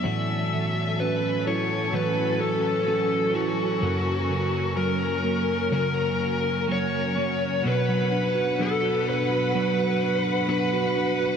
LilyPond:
<<
  \new Staff \with { instrumentName = "Lead electric guitar" } { \time 4/4 \key b \minor \tempo 4 = 63 e''4 b'8 cis''8 b'8 a'4 fis'8~ | fis'4 ais'4 ais'4 cis''4 | b'4 a'8 b'4. b'4 | }
  \new Staff \with { instrumentName = "String section" } { \time 4/4 \key b \minor << { a'1 | ais'1 | r1 | } \\ { <fis cis'>1~ | <fis cis'>1 | <b' fis''>1 | } >> }
  \new Staff \with { instrumentName = "Tine electric piano" } { \time 4/4 \key b \minor a,8 e8 cis'8 e'8 e4 cis'8 e'8 | fis,8 cis8 fis8 ais8 cis4 fis8 ais8 | b,16 fis16 d'16 fis'16 d'16 fis'16 d'16 fis'16 fis16 fis'16 d'16 fis'16 d'16 fis'16 d'16 fis'16 | }
  \new Staff \with { instrumentName = "Clean electric guitar" } { \time 4/4 \key b \minor <a, e fis a cis' fis'>8 <fis a cis' fis'>4 <fis a cis' fis'>8 <a, e fis a cis' fis'>8 <fis a cis' fis'>8 <fis a cis' fis'>8 <fis a cis' fis'>8 | <fis, cis fis ais cis' fis'>8 <fis ais cis' fis'>4. <fis, cis fis ais cis' fis'>8 <fis ais cis' fis'>8 <fis ais cis' fis'>8 <fis ais cis' fis'>8 | <b, fis b d' fis'>4 <b, fis b d' fis'>4 <fis b d' fis'>8 <b d' fis'>8 <b, fis b d' fis'>8 <b d' fis'>8 | }
>>